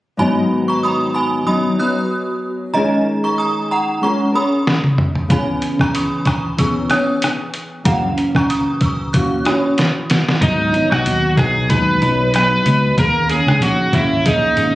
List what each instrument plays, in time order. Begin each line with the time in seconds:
0.17 nylon-string guitar G#2 D#3 F#3 B3, synth bell G#5 B5
0.22 nylon-string guitar D#4
0.68 synth bell A#5 C#6
0.83 synth bell B5 D#6
1.14 synth bell G#5 B5
1.45 nylon-string guitar D#3 F#3 B3 D#4, synth bell B5 D#6
1.78 nylon-string guitar F#3 B3 D#4, synth bell D#6 F#6
2.73 nylon-string guitar D#3 G#3 C#4 G#4, synth bell D#5 A#5
2.78 nylon-string guitar A#4
3.24 synth bell A#5 C#6
3.38 synth bell A#5 D#6
3.71 synth bell F#5 A#5
4.01 nylon-string guitar G#3 C#4 G#4 A#4, synth bell A#5 C#6
4.33 nylon-string guitar C#4 G#4 A#4, synth bell B5 D#6
4.67 snare
4.84 high tom
4.98 mid tom
5.15 floor tom
5.28 nylon-string guitar C#3 E3 B3 C#4, synth bell G#5 B5, kick, closed hi-hat
5.32 nylon-string guitar G#4
5.62 closed hi-hat
5.79 synth bell A#5 C#6, kick, cross-stick
5.95 synth bell B5 D#6, closed hi-hat
6.25 synth bell A#5 C#6, kick, cross-stick, closed hi-hat
6.57 nylon-string guitar E3 B3 C#4 G#4, synth bell C#6 E6, kick, closed hi-hat
6.89 nylon-string guitar B3 C#4 G#4, synth bell D#6 F#6, cross-stick, closed hi-hat
7.22 cross-stick, closed hi-hat
7.54 closed hi-hat
7.84 nylon-string guitar F#2 C#3 E3 A#3 C#4, synth bell F#5 A#5, kick, closed hi-hat
7.88 nylon-string guitar F#4
8.18 closed hi-hat
8.35 synth bell A#5 C#6, kick, cross-stick
8.50 synth bell A#5 D#6, closed hi-hat
8.81 synth bell C#6 E6, kick, closed hi-hat
9.13 nylon-string guitar E3 A#3 C#4 F#4, synth bell C#6 F#6, kick, closed hi-hat
9.45 nylon-string guitar E3 A#3 C#4 F#4, synth bell B5 D#6, cross-stick, closed hi-hat
9.78 snare, closed hi-hat
10.10 snare, closed hi-hat
10.29 snare
10.41 picked electric bass G#1, nylon-string guitar G#2 D#3 F#3 B3 D#4, electric slide guitar D#4, kick, closed hi-hat
10.72 nylon-string guitar F#3 B3 D#4, closed hi-hat
10.92 picked electric bass B1, electric slide guitar F#4, cross-stick
11.04 picked electric bass D#2, nylon-string guitar D#3 F#3 B3 D#4, closed hi-hat
11.37 picked electric bass B1, nylon-string guitar F#3 B3 D#4, electric slide guitar G#4, kick, cross-stick, closed hi-hat
11.69 picked electric bass D#2, nylon-string guitar G#2 D#3 F#3 B3 D#4, electric slide guitar B4, kick, closed hi-hat
12.02 picked electric bass B1, nylon-string guitar F#3 B3 D#4, closed hi-hat
12.33 nylon-string guitar D#3 F#3 B3 D#4, electric slide guitar B4, cross-stick, closed hi-hat
12.65 picked electric bass C#2, nylon-string guitar F#3 B3 D#4, closed hi-hat
12.97 picked electric bass D#2, nylon-string guitar D#3 A#3 C#4 G#4, electric slide guitar A#4, kick, closed hi-hat
13.29 nylon-string guitar A#3 C#4 G#4, electric slide guitar G#4, closed hi-hat
13.47 picked electric bass C#2, cross-stick
13.60 picked electric bass A#1, nylon-string guitar D#3 A#3 C#4 G#4, electric slide guitar F#4, closed hi-hat
13.92 picked electric bass G#1, nylon-string guitar A#3 C#4 G#4, electric slide guitar E4, kick, closed hi-hat
14.24 picked electric bass A#1, nylon-string guitar D#3 A#3 C#4 G#4, electric slide guitar D#4, kick, closed hi-hat
14.56 picked electric bass G#1, nylon-string guitar A#3 C#4 G#4, closed hi-hat